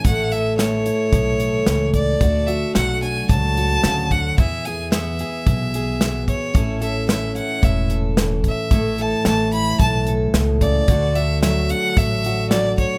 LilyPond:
<<
  \new Staff \with { instrumentName = "Fiddle" } { \time 4/4 \key a \major \tempo 4 = 111 fis''8 e''8 cis''2~ cis''8 d''8~ | d''8 e''8 fis''8 gis''8 a''4. fis''8 | e''8 gis''8 e''2~ e''8 cis''8~ | cis''8 e''8 e''8 fis''8 e''8 r4 e''8~ |
e''8 a''8 a''8 b''8 a''8 r4 d''8~ | d''8 e''8 e''8 fis''8 e''4 d''8 cis''8 | }
  \new Staff \with { instrumentName = "Steel-string acoustic guitar" } { \time 4/4 \key a \major << { <a e' a'>8 a'8 a8 e'4 a'4. | <a d' fis'>8 fis'8 a8 d'4 fis'4. | <e' gis'>8 gis'8 e'8 gis'4 gis'4. | <cis' e' a'>8 a'8 cis'8 e'4 a'4. |
<a e' a'>8 a'8 a8 e'4 a'4. | <a d' fis'>8 fis'8 a8 d'4 fis'4. | } \\ { <a, e>4 e4 a,4 e4 | r4 fis4 a,4 cis8 d8 | e4 b4 b,4 b4 | a,4 e4 a,4 e4 |
a,4 e4 a,4 b,8 cis8 | d4 fis4 a,4 fis4 | } >> }
  \new Staff \with { instrumentName = "Upright bass" } { \clef bass \time 4/4 \key a \major a,,2 b,,4 cis,4 | d,4 b,,4 cis,4 d,4 | e,2 b,,2 | a,,2 e,,2 |
a,,4 a,,4 b,,4 cis,4 | d,2 a,,2 | }
  \new DrumStaff \with { instrumentName = "Drums" } \drummode { \time 4/4 <hh bd>8 hh8 <hh sn>8 hh8 <hh bd>8 hh8 <hh sn>8 <hh bd>8 | <hh bd>8 hh8 <hh sn>8 hh8 <hh bd>8 hh8 <hh sn>8 <hh bd>8 | <hh bd>8 hh8 <hh sn>8 hh8 <hh bd>8 hh8 <hh sn>8 <hh bd>8 | <hh bd>8 hh8 <hh sn>8 hh8 <hh bd>8 hh8 <hh sn>8 <hh bd>8 |
<hh bd>8 hh8 <hh sn>8 hh8 <hh bd>8 hh8 <hh sn>8 <hh bd>8 | <hh bd>8 hh8 <hh sn>8 hh8 <hh bd>8 hh8 <hh sn>8 <hh bd>8 | }
>>